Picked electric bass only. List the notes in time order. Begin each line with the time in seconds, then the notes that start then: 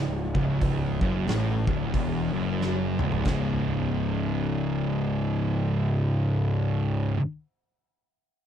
Already playing: C#1
0.35 C#1
1.01 F#1
1.28 A1
1.67 D1
1.94 E1
2.33 F#1
2.99 C#1
3.26 C#1